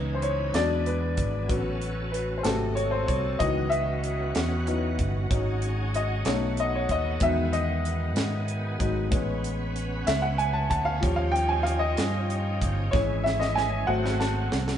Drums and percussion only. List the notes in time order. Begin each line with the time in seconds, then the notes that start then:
0.22 closed hi-hat
0.54 snare, closed hi-hat
0.86 closed hi-hat
1.17 kick, closed hi-hat
1.49 kick, closed hi-hat
1.81 closed hi-hat
2.14 closed hi-hat
2.44 snare, closed hi-hat
2.77 closed hi-hat
3.08 kick, closed hi-hat
3.40 kick, closed hi-hat
3.72 closed hi-hat
4.04 closed hi-hat
4.35 snare, closed hi-hat
4.67 closed hi-hat
4.99 kick, closed hi-hat
5.31 kick, closed hi-hat
5.62 closed hi-hat
5.94 closed hi-hat
6.25 snare, closed hi-hat
6.57 closed hi-hat
6.89 kick, closed hi-hat
7.20 kick, closed hi-hat
7.53 closed hi-hat
7.85 closed hi-hat
8.16 snare, closed hi-hat
8.48 closed hi-hat
8.80 kick, closed hi-hat
9.12 kick, closed hi-hat
9.44 closed hi-hat
9.76 closed hi-hat
10.07 snare, closed hi-hat
10.39 closed hi-hat
10.71 kick, closed hi-hat
11.03 kick, closed hi-hat
11.36 closed hi-hat
11.67 closed hi-hat
11.97 snare, closed hi-hat
12.30 closed hi-hat
12.62 kick, closed hi-hat
12.93 kick, snare
13.26 snare
13.42 snare
13.58 snare
14.06 snare
14.21 snare
14.52 snare
14.68 snare